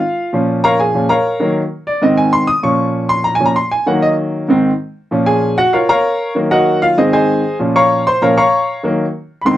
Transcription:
Already playing: F4 F5
0.33 A#2 F3 C#4
0.64 A#4 C#5 F5 A#5
0.80 G#4 G#5
0.95 A#2 F3 C#4
1.09 A#4 C#5 F5 A#5
1.40 D#3 F#3 A#3
1.87 D5
2.02 G#2 D#3 C4 D#5
2.17 G#5
2.33 C6
2.47 D#6
2.63 A#2 F3 C#4 C#6
3.09 C6
3.24 A#5
3.35 G#5
3.40 A#2 F3 C#4
3.46 A#5
3.56 C6
3.71 G#5
3.86 D#3 F#3 A#3 F#5
4.02 D#5
4.48 G#2 D#3 C4
5.11 A#2 F3 C#4
5.26 G#4 G#5
5.58 F#4 F#5
5.73 F4 A#4 C#5 F5
5.89 A#4 C#5 F5 A#5
6.35 D#3 F#3 A#3
6.51 F#4 A#4 D#5 F#5
6.82 F4 F5
6.97 G#2 D#3 C4 D#4 G#4 C5 D#5
7.13 G#4 C5 D#5 G#5
7.59 A#2 F3 C#4
7.76 C#5 F5 A#5 C#6
8.07 C5 C6
8.21 A#2 F3 C#4 A#4 C#5 F5 A#5
8.37 C#5 F5 A#5 C#6
8.83 D#3 F#3 A#3
9.41 G#2 B5
9.46 D#3 C4 C6

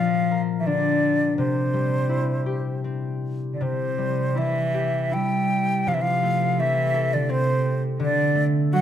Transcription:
Already playing: A#2 F3 C4 F4 F5
0.31 A#4
0.59 E3 E5
0.66 D3 D4 D5
1.38 C3 C5
1.73 G3
2.09 E4
2.46 G4
2.84 C4
3.53 D3 D5
3.61 C3 C5
3.98 G3
4.35 E3 E4 E5
4.74 G4
5.11 G3 E4 G5
5.87 C3 F3 F5
5.93 E3 E5
6.01 F3 F5
6.23 A3
6.59 E3 C4 E5
6.94 A4
7.13 D3 D5
7.29 C3 C4 C5
8.00 D3 D5
8.35 A3
8.73 F#3 F#4 F#5

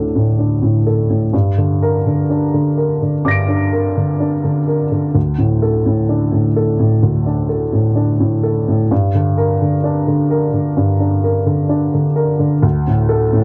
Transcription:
Already playing: D2 A2 D4 A4
0.15 A2
0.39 D4
0.62 A2
0.87 A4
1.10 A2
1.33 G2
1.58 D3
1.82 A#4
2.07 D3
2.30 D4
2.54 D3
2.77 A#4
3.02 D3
3.25 G2 D6 A#6
3.31 D7
3.48 D4
3.73 A#4
3.97 D3
4.20 D4
4.44 D3
4.67 A#4
4.91 D3
5.15 D2
5.38 A2
5.62 A4
5.86 A2
6.09 D4
6.32 A2
6.56 A4
6.79 A2
7.03 D2
7.26 D4
7.49 A4
7.72 A2
7.95 D4
8.20 A2
8.43 A4
8.68 A2
8.91 G2
9.15 D3
9.38 A#4
9.62 D3
9.84 D4
10.07 D3
10.31 A#4
10.53 D3
10.77 G2
11.00 D4
11.24 A#4
11.46 D3
11.69 D4
11.94 D3
12.16 A#4
12.39 D3
12.63 D2
12.87 A2
13.09 A4
13.33 A2

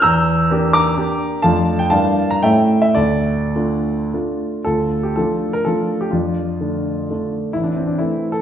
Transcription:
0.02 E2 A#5 E6
0.50 A#3 D4 G4
0.73 A#5 D6
0.97 A#3 D4 G4
1.42 F2 A3 D4 F4 F5 A5
1.79 G5
1.90 G2 A#3 D4 E4 F5 A5
2.31 A#5
2.43 A2 A3 C#4 E4 E5 G5
2.82 E5
2.94 D2 A4 D5
3.56 A3 D4 F4
4.14 A3 D4 F4
4.64 D2 F4 A4
5.03 G4
5.16 F3 A3 D4 F4 A4
5.53 A#4
5.65 F3 A3 D4 F4 A4
6.01 G4
6.11 F2 D4 F4
6.60 D3 A3 D4
7.10 D3 A3 D4
7.53 A1 E4
7.64 D4
7.76 C4
7.87 D4
7.99 E3 A3 C4 E4
8.32 A4

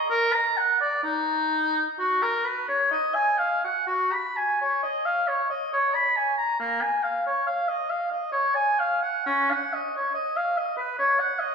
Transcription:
0.10 A#4
0.33 A#5
0.57 F#5
0.80 D5
1.04 D#4
1.99 F#4
2.22 A#4
2.45 B4
2.68 C#5
2.91 D#5
3.14 G#5
3.39 F5
3.65 F#5
3.87 F#4
4.13 B5
4.37 G#5
4.61 C#5
4.83 D#5
5.05 F5
5.28 C#5
5.50 D#5
5.73 C#5
5.95 B5
6.17 G#5
6.38 A#5
6.60 A#3
6.82 G#5
7.03 F5
7.26 C#5
7.47 F5
7.69 D#5
7.90 F5
8.11 D#5
8.32 C#5
8.55 G#5
8.79 F5
9.02 F#5
9.26 C#4
9.52 F#5
9.74 D#5
9.96 C#5
10.15 D#5
10.37 F5
10.58 D#5
10.77 B4
10.99 C#5
11.20 F#5
11.40 D#5

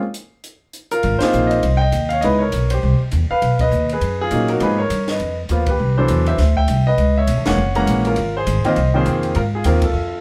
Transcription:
0.14 closed hi-hat
0.44 closed hi-hat
0.73 closed hi-hat
0.91 F4 A#4, closed hi-hat
1.03 G#1, ride
1.19 A#3 C4 D#4 G#4 C5, muted upright bass stroke, snare, ride
1.23 F4
1.33 A#1, hi-hat pedal
1.47 D#5, ride
1.52 C5
1.63 C2, ride
1.77 G5
1.81 D#5
1.92 D#2, hi-hat pedal, ride
2.09 C#5 F5, ride
2.21 C#2 G#3 B3 D#4 E4 B4 D#5, ride
2.39 A#4 C#5
2.52 B1, hi-hat pedal, ride
2.70 G4 C5, ride
2.83 C2
3.00 muted upright bass stroke
3.11 E2, hi-hat pedal, ride
3.31 B4 F5, muted upright bass stroke
3.42 B1, ride
3.59 B4 D#5, kick, ride
3.71 D#2, hi-hat pedal
3.89 B4, ride
3.94 G#4
4.01 F#2, ride
4.21 F4 G#4
4.31 A#2 F#3 A#3 C#4 D#4, hi-hat pedal, ride
4.48 F#4 A#4, ride
4.60 G#2 F3 A#3 B3 D#4 G#4 B4, ride
4.78 A#4 C#5
4.90 G2, hi-hat pedal, ride
5.08 B4 D#5, snare, ride
5.20 F2, ride
5.49 D#2 F3 A#3 B3 F4, hi-hat pedal, ride
5.66 G4 B4, kick, ride
5.79 C2
5.97 E3 F#3 B3 D4 A4 C5
6.08 E2, hi-hat pedal, ride
6.26 C5 E5, ride
6.38 D2, snare, ride
6.56 E5 G5, kick
6.68 C2, hi-hat pedal, ride
6.87 B4 D#5
6.97 C#2, ride
7.18 C#5 E5
7.27 B1, hi-hat pedal, ride
7.37 G#1
7.45 E1 E3 G#3 A#3 C#4 C#5 F#5, snare, ride
7.58 F#1
7.75 E3 G#3 A#3 C#4 F#5 A#5, ride
7.87 A#1, hi-hat pedal, ride
8.05 F4 A#4, ride
8.16 G#1, ride
8.37 G#4 C5
8.47 G#1, hi-hat pedal, ride
8.65 D#3 F3 A#3 C4 C5 D#5, muted upright bass stroke, ride
8.76 C2, ride
8.94 D#3 F3 A#3 C4 G#4 C5
9.06 F2, hi-hat pedal, ride
9.23 ride
9.35 G#2 F4 A#4, ride
9.55 F4 G#4
9.64 D#2 D#3 F3 A#3 C4 F4 A#4, hi-hat pedal, ride
9.82 F4 A4, kick, ride
9.93 F2

